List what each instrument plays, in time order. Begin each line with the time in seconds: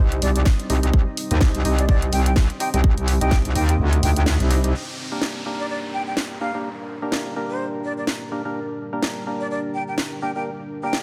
Already playing: wobble bass C2, ambient pad G3 C4 D#4 C5, synth stab D#4 G4 C5 D#5
0.12 closed hi-hat
0.22 wobble bass C2, flute D5, open hi-hat
0.36 flute D5, closed hi-hat
0.45 kick, snare
0.60 closed hi-hat
0.70 wobble bass C2, synth stab D#4 G4 C5 D#5, open hi-hat
0.83 synth stab D#4 G4 C5 D#5, closed hi-hat
0.94 wobble bass C2, ambient pad D6, kick
1.17 open hi-hat
1.31 wobble bass D#2, synth stab D#4 G4 C5 D#5, closed hi-hat
1.41 wobble bass C2, kick, snare
1.55 wobble bass C2, closed hi-hat
1.65 wobble bass C2, synth stab D#4 G4 C5 D#5, open hi-hat
1.79 flute D5, closed hi-hat
1.89 flute D5, kick
2.02 closed hi-hat
2.13 wobble bass C2, flute G5, open hi-hat
2.26 flute G5, closed hi-hat
2.36 kick, snare
2.50 closed hi-hat
2.60 synth stab D#4 G4 C5 D#5, flute G5, open hi-hat
2.74 wobble bass C2, synth stab D#4 G4 C5 D#5, flute G5, closed hi-hat
2.84 kick
2.98 wobble bass C2, closed hi-hat
3.08 open hi-hat
3.21 wobble bass C2, synth stab D#4 G4 C5 D#5, flute G5, closed hi-hat
3.31 kick, snare
3.45 wobble bass C2, closed hi-hat
3.55 wobble bass D#2, synth stab D#4 G4 C5 D#5, flute G5, open hi-hat
3.69 flute G5, closed hi-hat
3.79 wobble bass D2
3.93 closed hi-hat
4.03 wobble bass D2, flute G5, open hi-hat
4.16 flute G5, closed hi-hat
4.26 snare
4.40 wobble bass C2, closed hi-hat
4.51 synth stab D#4 G4 C5 D#5, open hi-hat
4.64 synth stab D#4 G4 C5 D#5, closed hi-hat
4.74 ambient pad G3 A#3 D4 A#4, downlifter
5.12 synth stab A#3 D4 G4 A#4
5.22 snare
5.46 synth stab A#3 D4 G4 A#4
5.60 flute D5
5.70 flute D5
5.94 flute G5
6.07 flute G5
6.17 snare
6.41 synth stab A#3 D4 G4 A#4, flute F5
6.55 synth stab A#3 D4 G4 A#4
7.02 synth stab A#3 D4 G4 A#4
7.12 snare
7.36 synth stab A#3 D4 G4 A#4
7.50 flute C5
7.84 flute D5
7.98 flute D5
8.07 snare
8.32 synth stab A#3 D4 G4 A#4
8.45 synth stab A#3 D4 G4 A#4
8.93 synth stab A#3 D4 G4 A#4
9.03 snare
9.27 synth stab A#3 D4 G4 A#4
9.40 flute D5
9.51 flute D5
9.74 flute G5
9.88 flute G5
9.98 snare
10.22 synth stab A#3 D4 G4 A#4, flute G5
10.36 synth stab A#3 D4 G4 A#4, flute G5
10.83 synth stab A#3 D4 G4 A#4, flute G5
10.93 snare